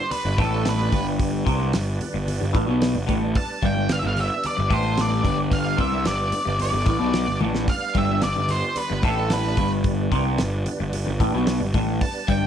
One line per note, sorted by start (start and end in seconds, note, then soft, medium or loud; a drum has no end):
0.00 12.47 G3 medium
0.00 12.47 B3 medium
0.00 12.47 D4 medium
0.00 12.47 B4 soft
0.00 0.11 C5 medium
0.00 12.47 D5 medium
0.11 0.36 B4 medium
0.11 open hi-hat medium
0.11 low conga medium
0.25 0.37 G1 medium
0.25 0.38 G2 medium
0.38 0.89 A1 medium
0.38 0.92 A2 loud
0.38 0.67 A4 medium
0.38 kick loud
0.38 open hi-hat medium
0.38 high conga medium
0.65 1.05 B4 medium
0.65 snare loud
0.65 open hi-hat medium
0.79 high conga medium
0.92 1.43 G1 medium
0.92 1.45 G2 medium
0.92 kick loud
0.92 open hi-hat medium
0.92 high conga medium
0.92 low conga medium
1.20 kick loud
1.20 open hi-hat medium
1.46 1.72 C2 medium
1.46 1.72 C3 medium
1.46 kick medium
1.46 open hi-hat medium
1.60 high conga medium
1.73 1.99 G1 medium
1.73 1.95 G2 medium
1.73 snare loud
1.73 open hi-hat medium
2.01 open hi-hat medium
2.01 low conga medium
2.14 2.39 G1 medium
2.14 2.36 G2 medium
2.27 open hi-hat medium
2.27 low conga medium
2.41 2.54 G1 medium
2.41 2.55 G2 medium
2.54 2.67 A1 medium
2.54 2.67 A2 loud
2.54 kick loud
2.54 open hi-hat soft
2.54 high conga medium
2.67 2.93 B1 medium
2.67 2.94 B2 medium
2.82 snare loud
2.82 open hi-hat medium
2.95 3.07 G1 medium
2.95 3.08 G2 medium
2.95 high conga medium
3.07 3.34 A1 medium
3.07 3.34 A2 medium
3.07 kick loud
3.07 open hi-hat medium
3.07 high conga medium
3.07 low conga medium
3.35 3.61 A5 medium
3.35 kick loud
3.35 open hi-hat medium
3.62 3.88 G1 medium
3.62 3.89 G2 loud
3.62 3.89 G5 medium
3.62 kick medium
3.62 open hi-hat soft
3.76 high conga medium
3.89 4.02 G1 medium
3.89 4.02 G2 medium
3.89 3.98 F5 medium
3.89 snare loud
3.89 open hi-hat medium
3.99 4.25 G2 medium
3.99 4.05 E5 medium
4.04 4.29 G1 medium
4.04 4.19 F5 loud
4.16 open hi-hat soft
4.16 low conga medium
4.21 4.46 E5 medium
4.44 4.70 D5 loud
4.44 open hi-hat medium
4.44 low conga medium
4.57 4.70 G1 medium
4.57 4.71 G2 medium
4.70 5.21 A1 medium
4.70 5.24 A2 loud
4.70 5.00 C5 medium
4.70 kick loud
4.70 open hi-hat medium
4.70 high conga medium
4.98 5.37 D5 medium
4.98 snare loud
4.98 open hi-hat medium
5.11 high conga medium
5.24 5.75 G1 loud
5.24 5.78 G2 medium
5.24 kick medium
5.24 open hi-hat medium
5.24 high conga medium
5.24 low conga medium
5.52 5.78 F5 medium
5.52 kick loud
5.52 open hi-hat medium
5.77 6.04 C2 medium
5.77 6.04 C3 loud
5.77 6.05 E5 medium
5.77 kick medium
5.77 open hi-hat soft
5.77 low conga medium
5.92 high conga medium
6.04 6.31 G1 medium
6.04 6.27 G2 medium
6.04 6.57 D5 medium
6.04 snare medium
6.04 open hi-hat medium
6.32 open hi-hat medium
6.32 high conga medium
6.45 6.72 G1 medium
6.45 6.68 G2 medium
6.59 7.38 D5 medium
6.59 open hi-hat medium
6.59 low conga medium
6.72 6.86 G1 medium
6.72 6.87 G2 medium
6.86 7.00 A1 medium
6.86 6.99 A2 loud
6.86 kick loud
6.86 open hi-hat medium
6.86 high conga medium
6.99 7.26 B1 medium
6.99 7.26 B2 loud
7.14 snare loud
7.14 open hi-hat medium
7.26 7.41 G1 medium
7.26 7.41 G2 medium
7.41 7.67 A1 loud
7.41 7.67 A2 medium
7.41 high tom medium
7.41 high conga medium
7.41 low conga medium
7.55 snare medium
7.68 7.97 F5 loud
7.68 kick loud
7.68 open hi-hat medium
7.95 8.21 G1 medium
7.95 8.21 G2 medium
7.95 8.23 E5 medium
7.95 kick medium
7.95 open hi-hat soft
8.08 high conga medium
8.22 8.36 G1 medium
8.22 8.35 G2 medium
8.22 8.51 D5 medium
8.22 snare medium
8.22 open hi-hat medium
8.36 8.62 G1 medium
8.36 8.58 G2 medium
8.48 8.75 C5 medium
8.48 open hi-hat medium
8.48 low conga medium
8.76 9.04 B4 medium
8.76 open hi-hat medium
8.76 low conga medium
8.90 9.03 G1 medium
8.90 9.04 G2 medium
9.02 9.54 A1 medium
9.02 9.57 A2 loud
9.02 9.32 A4 medium
9.02 kick loud
9.02 open hi-hat medium
9.02 high conga medium
9.30 9.70 B4 medium
9.30 snare loud
9.30 open hi-hat medium
9.44 high conga medium
9.57 10.08 G1 loud
9.57 10.11 G2 medium
9.57 kick loud
9.57 open hi-hat medium
9.57 high conga medium
9.57 low conga medium
9.84 kick loud
9.84 open hi-hat medium
10.12 10.37 C2 medium
10.12 10.38 C3 loud
10.12 kick medium
10.12 open hi-hat soft
10.25 high conga medium
10.38 10.65 G1 medium
10.38 10.61 G2 medium
10.38 snare medium
10.38 open hi-hat medium
10.66 open hi-hat medium
10.66 low conga medium
10.80 11.05 G1 medium
10.80 11.02 G2 medium
10.93 open hi-hat medium
10.93 low conga medium
11.07 11.19 G1 medium
11.07 11.20 G2 medium
11.20 11.33 A1 medium
11.20 11.33 A2 loud
11.20 kick loud
11.20 open hi-hat medium
11.20 high conga medium
11.34 11.59 B1 loud
11.34 11.60 B2 loud
11.47 snare loud
11.47 open hi-hat medium
11.61 11.73 G1 medium
11.61 11.75 G2 medium
11.61 high conga medium
11.74 11.99 A1 medium
11.74 12.01 A2 medium
11.74 kick medium
11.74 open hi-hat medium
11.74 high conga medium
11.74 low conga medium
12.01 12.27 A5 loud
12.01 kick loud
12.01 open hi-hat medium
12.28 12.47 G1 medium
12.28 12.47 G2 loud
12.28 12.47 G5 medium
12.28 kick medium
12.28 open hi-hat medium
12.42 high conga medium